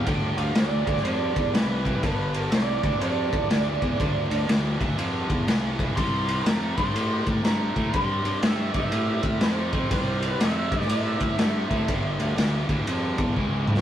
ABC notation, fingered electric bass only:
X:1
M:4/4
L:1/8
Q:"Swing" 1/4=122
K:Gmix
V:1 name="Fingered electric bass" clef=bass
D,, D,, D,, D,, F,, E,, C,,2 | G,,,2 C,, D,, F,, E,, D,, E,, | D,, D,, D,, D,, F,, E,, C,,2 | C,,2 F,, G,, A,, A,, G,, A,, |
G,, G,, G,, G,, A,, A,, F,,2 | C,,2 F,, G,, A,, A,, G,, A,, | G,,, D,, D,, D,, F,, E,, ^C,,2 |]